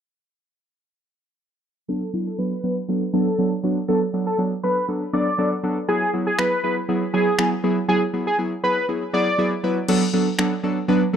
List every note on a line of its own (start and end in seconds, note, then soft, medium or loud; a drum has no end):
1.88 2.03 F#3 medium
1.88 2.03 B3 medium
1.88 2.03 D4 medium
1.88 2.11 A4 loud
1.88 2.04 A4 loud
2.13 2.28 F#3 medium
2.13 2.28 B3 medium
2.13 2.28 D4 medium
2.13 2.29 E4 medium
2.27 2.37 A4 medium
2.38 2.53 F#3 medium
2.38 2.53 B3 medium
2.38 2.53 D4 medium
2.38 2.53 A4 medium
2.38 2.61 B4 medium
2.63 2.78 F#3 medium
2.63 2.78 B3 medium
2.63 2.78 D4 medium
2.63 2.75 B4 medium
2.63 2.79 B4 medium
2.88 3.03 F#3 medium
2.88 3.03 B3 medium
2.88 3.03 D4 medium
2.88 3.04 A4 medium
3.13 3.28 F#3 medium
3.13 3.28 B3 medium
3.13 3.28 D4 medium
3.13 3.49 A4 medium
3.13 3.28 A4 loud
3.38 3.53 F#3 medium
3.38 3.53 B3 medium
3.38 3.53 D4 medium
3.38 3.53 A4 loud
3.63 3.78 F#3 medium
3.63 3.78 B3 medium
3.63 3.78 D4 medium
3.63 3.78 F#4 loud
3.88 4.03 F#3 medium
3.88 4.03 B3 medium
3.88 4.03 D4 medium
3.88 4.00 A4 loud
3.88 4.04 A4 loud
4.13 4.28 F#3 medium
4.13 4.28 B3 medium
4.13 4.28 D4 medium
4.13 4.29 A4 medium
4.27 4.37 A4 medium
4.38 4.53 F#3 medium
4.38 4.53 B3 medium
4.38 4.53 D4 medium
4.38 4.53 A4 medium
4.63 4.78 F#3 medium
4.63 4.78 B3 medium
4.63 4.78 D4 medium
4.63 4.78 A4 medium
4.63 4.86 B4 medium
4.88 5.03 F#3 medium
4.88 5.03 B3 medium
4.88 5.03 D4 medium
4.88 5.03 A4 medium
5.13 5.28 F#3 medium
5.13 5.28 B3 medium
5.13 5.28 D4 medium
5.13 5.28 A4 loud
5.13 5.49 D5 medium
5.38 5.53 F#3 medium
5.38 5.53 B3 medium
5.38 5.53 D4 medium
5.38 5.53 A4 loud
5.63 5.78 F#3 medium
5.63 5.78 B3 medium
5.63 5.78 D4 medium
5.63 5.78 A4 loud
5.88 6.03 F#3 medium
5.88 6.03 B3 medium
5.88 6.03 E4 medium
5.88 6.11 G#4 loud
5.88 6.04 G#4 loud
6.13 6.28 F#3 medium
6.13 6.28 B3 medium
6.13 6.28 E4 medium
6.13 6.29 G#4 medium
6.27 6.37 G#4 medium
6.38 6.53 F#3 medium
6.38 6.53 B3 medium
6.38 6.54 E4 medium
6.38 6.54 G#4 medium
6.38 6.61 B4 medium
6.38 finger snap loud
6.63 6.78 F#3 medium
6.63 6.78 B3 medium
6.63 6.78 E4 medium
6.63 6.79 G#4 medium
6.63 6.75 B4 medium
6.88 7.03 F#3 medium
6.88 7.03 B3 medium
6.88 7.03 E4 medium
6.88 7.04 G#4 medium
7.14 7.28 F#3 loud
7.14 7.28 B3 medium
7.14 7.29 E4 medium
7.14 7.50 G#4 medium
7.14 7.29 G#4 loud
7.38 7.53 F#3 medium
7.38 7.53 B3 medium
7.38 7.53 E4 medium
7.38 7.54 G#4 loud
7.38 finger snap loud
7.63 7.78 F#3 medium
7.63 7.78 B3 medium
7.63 7.78 E4 medium
7.63 7.79 G#4 loud
7.88 8.03 F#3 medium
7.88 8.03 B3 medium
7.88 8.03 E4 medium
7.88 8.00 G#4 loud
7.88 8.04 G#4 loud
8.13 8.28 F#3 medium
8.13 8.28 B3 medium
8.13 8.28 E4 medium
8.13 8.29 G#4 medium
8.27 8.37 G#4 medium
8.38 8.53 F#3 medium
8.38 8.53 B3 medium
8.38 8.53 E4 medium
8.38 8.53 G#4 medium
8.63 8.78 F#3 medium
8.63 8.78 B3 medium
8.63 8.78 E4 medium
8.63 8.78 G#4 medium
8.63 8.86 B4 medium
8.88 9.03 F#3 medium
8.88 9.03 B3 medium
8.88 9.03 E4 medium
8.88 9.04 G#4 medium
9.13 9.28 F#3 medium
9.13 9.28 B3 medium
9.13 9.28 E4 medium
9.13 9.28 G#4 loud
9.13 9.49 D5 medium
9.38 9.53 F#3 medium
9.38 9.53 B3 medium
9.38 9.53 E4 medium
9.38 9.53 G#4 loud
9.63 9.78 F#3 medium
9.63 9.78 B3 medium
9.63 9.78 E4 medium
9.63 9.79 B4 loud
9.88 10.03 F#3 loud
9.88 10.03 B3 loud
9.88 10.03 D4 loud
9.88 10.04 A4 loud
9.88 crash medium
10.13 10.28 F#3 medium
10.13 10.28 B3 medium
10.13 10.28 D4 medium
10.13 10.28 A4 medium
10.38 10.53 F#3 medium
10.38 10.53 B3 medium
10.38 10.53 D4 medium
10.38 10.54 A4 medium
10.38 finger snap loud
10.63 10.78 F#3 medium
10.63 10.78 B3 medium
10.63 10.78 D4 medium
10.63 10.78 A4 medium
10.88 11.03 F#3 loud
10.88 11.03 B3 loud
10.88 11.03 D4 loud
10.88 11.03 B4 loud
11.13 11.16 F#3 medium
11.13 11.16 B3 medium